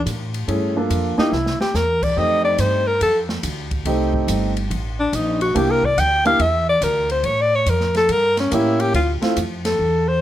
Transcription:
0.06 0.47 A2 medium
0.06 hi-hat pedal medium
0.06 ride medium
0.34 ride soft
0.47 0.89 G2 medium
0.47 0.73 A3 medium
0.47 0.73 C#4 medium
0.47 0.73 E4 medium
0.47 0.74 G#4 medium
0.47 kick soft
0.47 ride medium
0.76 1.13 A#3 medium
0.76 1.13 D4 medium
0.76 1.13 F4 medium
0.76 1.13 A4 medium
0.90 1.16 F2 medium
0.90 kick soft
0.90 hi-hat pedal medium
0.90 ride medium
1.18 1.31 A#3 medium
1.18 1.31 D4 medium
1.18 1.35 D#4 medium
1.18 1.31 E4 medium
1.18 1.32 G4 medium
1.18 muted upright bass stroke soft
1.18 snare medium
1.32 1.58 C2 medium
1.32 1.60 E4 medium
1.32 snare soft
1.46 snare soft
1.60 1.77 G4 medium
1.60 muted upright bass stroke soft
1.60 snare medium
1.74 2.15 E2 medium
1.74 2.05 A#4 medium
1.74 snare medium
1.74 hi-hat pedal medium
2.03 2.19 D5 medium
2.03 kick medium
2.03 crash medium
2.17 2.58 F2 medium
2.17 2.81 A3 medium
2.17 2.81 C4 soft
2.17 2.82 D#4 soft
2.17 2.82 G4 medium
2.17 2.44 D#5 medium
2.17 kick soft
2.44 2.61 D5 medium
2.58 3.00 G2 medium
2.58 2.88 C5 medium
2.58 kick soft
2.58 hi-hat pedal soft
2.58 ride medium
2.87 3.01 A#4 medium
3.01 3.42 F2 medium
3.01 3.19 A4 medium
3.01 kick soft
3.01 ride medium
3.29 snare soft
3.43 3.84 D2 medium
3.43 kick soft
3.43 hi-hat pedal soft
3.43 ride medium
3.71 kick medium
3.71 ride soft
3.85 4.27 C2 medium
3.85 4.50 A3 medium
3.85 4.51 C4 medium
3.85 4.51 D#4 medium
3.85 4.51 G4 medium
3.85 kick soft
3.85 ride medium
4.14 kick medium
4.28 4.69 G1 medium
4.28 hi-hat pedal medium
4.28 ride medium
4.57 ride soft
4.70 5.11 A1 medium
4.70 kick soft
4.70 ride medium
4.99 5.16 D4 medium
5.13 5.54 A#1 medium
5.13 5.41 D#4 medium
5.13 kick soft
5.13 hi-hat pedal soft
5.13 ride medium
5.41 5.57 F#4 medium
5.41 ride soft
5.54 5.96 C2 medium
5.54 5.80 A#3 medium
5.54 5.80 D4 medium
5.54 5.81 E4 medium
5.54 5.72 G4 medium
5.54 5.81 G4 medium
5.54 kick soft
5.54 ride medium
5.71 5.86 A#4 medium
5.83 6.01 D5 medium
5.83 kick soft
5.97 6.39 D2 medium
5.97 6.26 G5 loud
5.97 kick soft
5.97 hi-hat pedal medium
5.97 ride medium
6.25 6.38 A#3 medium
6.25 6.38 D4 medium
6.25 6.39 E4 medium
6.25 6.39 G4 medium
6.25 6.43 F5 loud
6.25 ride soft
6.39 6.81 E2 medium
6.39 6.69 E5 medium
6.39 kick soft
6.39 ride medium
6.69 6.85 D5 medium
6.81 7.23 D2 medium
6.81 7.11 A#4 medium
6.81 kick soft
6.81 hi-hat pedal medium
6.81 ride medium
7.10 7.27 C5 medium
7.10 ride soft
7.23 7.65 A2 medium
7.23 7.43 C#5 medium
7.23 kick soft
7.23 ride medium
7.41 7.57 D5 loud
7.55 7.71 C#5 medium
7.66 8.08 F2 medium
7.66 7.96 A#4 medium
7.66 kick soft
7.66 hi-hat pedal medium
7.66 ride medium
7.80 snare soft
7.95 8.13 A4 medium
7.95 snare soft
7.95 ride soft
8.09 8.50 G2 medium
8.09 8.39 A#4 medium
8.09 kick soft
8.09 ride medium
8.37 8.56 C#4 medium
8.37 snare soft
8.37 ride soft
8.51 8.93 A2 medium
8.51 8.94 A#3 medium
8.51 8.94 C#4 medium
8.51 8.94 E4 medium
8.51 8.82 E4 medium
8.51 8.95 G4 medium
8.51 kick soft
8.51 hi-hat pedal soft
8.51 ride medium
8.80 8.95 G4 medium
8.80 ride soft
8.94 9.20 D2 medium
8.94 9.12 F4 medium
8.94 kick soft
8.94 ride medium
9.21 9.35 A3 medium
9.21 9.35 C4 medium
9.21 9.35 E4 medium
9.21 9.36 F4 medium
9.21 muted upright bass stroke soft
9.21 snare medium
9.21 ride soft
9.37 9.78 F2 medium
9.37 kick soft
9.37 hi-hat pedal medium
9.37 ride medium
9.65 10.10 A4 medium
9.65 snare soft
9.65 ride medium
9.79 10.20 E2 medium
9.79 kick soft
10.08 10.21 C5 medium

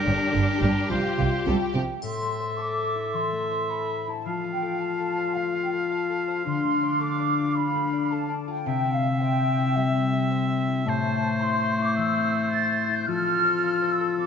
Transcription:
0.00 1.71 G3 soft
0.00 0.74 D4 medium
0.00 0.89 D4 medium
0.00 1.78 G4 soft
0.00 0.60 A#4 medium
0.05 0.15 G1 soft
0.05 0.15 G2 soft
0.05 0.13 D3 soft
0.33 0.43 G1 soft
0.33 0.43 G2 soft
0.33 0.41 D3 soft
0.61 0.70 G1 medium
0.61 0.71 G2 medium
0.61 0.88 G3 soft
0.61 0.90 A#4 medium
0.89 0.99 C2 soft
0.89 0.99 C3 soft
0.89 0.97 F3 soft
0.89 1.41 F4 soft
0.89 1.71 F4 soft
0.89 1.46 C5 soft
1.18 1.28 C2 soft
1.18 1.26 C3 soft
1.18 1.24 F5 soft
1.46 1.54 C2 soft
1.46 1.55 C3 soft
1.46 1.73 G3 soft
1.46 1.55 A4 soft
1.46 2.02 G5 soft
1.74 1.83 C2 soft
1.74 1.82 C3 soft
1.74 1.83 F3 soft
1.74 1.82 G4 soft
2.02 4.27 A2 soft
2.02 4.21 A4 soft
2.02 4.21 E5 soft
2.02 2.58 C6 medium
2.02 triangle soft
2.22 3.31 A3 soft
2.40 2.76 C5 soft
2.58 3.69 A4 soft
2.58 3.14 D6 medium
2.77 3.50 C5 soft
2.95 4.06 E4 soft
3.14 4.27 E3 soft
3.14 3.70 C6 medium
3.32 5.35 A3 soft
3.51 3.87 C5 soft
3.70 4.61 A4 soft
3.70 4.11 B5 medium
3.88 5.16 C5 soft
4.07 4.27 E4 soft
4.07 4.52 A5 medium
4.25 8.15 F3 soft
4.25 6.42 F4 soft
4.25 8.35 F5 medium
4.44 5.54 F4 soft
4.52 4.79 G5 medium
4.62 4.98 A4 soft
4.80 5.90 F5 soft
4.80 5.35 A5 medium
4.99 5.71 A4 soft
5.17 6.27 C5 soft
5.34 6.63 A3 soft
5.34 5.62 F5 medium
5.55 7.37 F4 soft
5.63 5.69 G5 medium
5.73 6.08 A4 soft
5.90 8.69 F5 soft
5.90 6.44 A5 medium
6.09 6.99 A4 soft
6.28 6.48 C5 soft
6.45 8.68 D3 medium
6.45 8.34 D4 medium
6.45 7.00 C6 medium
6.64 7.74 A3 soft
6.83 7.18 D5 soft
7.00 8.10 A4 soft
7.00 7.56 D6 medium
7.19 7.92 D5 soft
7.38 8.46 F4 soft
7.56 8.68 D4 soft
7.56 8.11 B5 medium
7.75 8.69 A3 soft
7.93 8.29 D5 soft
8.12 8.69 A4 soft
8.12 8.53 A5 medium
8.30 8.68 D5 soft
8.48 8.68 F4 soft
8.48 8.92 G5 medium
8.66 10.88 C3 medium
8.66 10.87 C4 medium
8.66 10.90 E5 medium
8.84 9.93 C4 soft
8.94 9.21 F5 medium
9.03 9.39 E5 soft
9.21 10.30 C5 soft
9.21 9.76 G5 medium
9.40 10.12 E5 soft
9.58 10.67 E4 soft
9.76 10.88 G3 soft
9.76 10.04 E5 medium
9.94 11.03 C4 soft
10.13 10.49 E5 soft
10.31 11.22 C5 soft
10.50 13.10 E5 soft
10.68 11.41 E4 soft
10.86 13.10 A2 medium
10.86 13.07 A3 medium
10.86 13.07 C5 medium
10.86 11.38 A5 medium
11.04 12.16 C4 soft
11.23 11.59 C5 soft
11.40 11.78 E4 medium
11.40 11.82 C6 medium
11.60 12.34 C5 soft
11.79 12.51 E4 soft
11.83 11.97 D6 medium
11.96 13.10 E3 soft
11.96 12.51 E6 medium
12.17 14.17 C4 soft
12.35 12.70 C5 soft
12.52 12.88 E4 soft
12.52 12.93 A6 medium
12.72 13.43 C5 soft
12.89 13.10 E4 soft
12.95 13.08 G6 medium
13.07 14.27 F3 medium
13.07 14.27 F4 medium
13.07 14.27 A4 medium
13.07 13.91 F6 medium
13.26 14.27 F4 soft
13.45 13.81 C5 soft
13.63 14.27 F5 soft
13.82 14.27 C5 soft
13.91 14.19 E6 medium
14.00 14.27 A4 soft
14.18 14.27 C4 soft
14.18 14.27 D6 medium

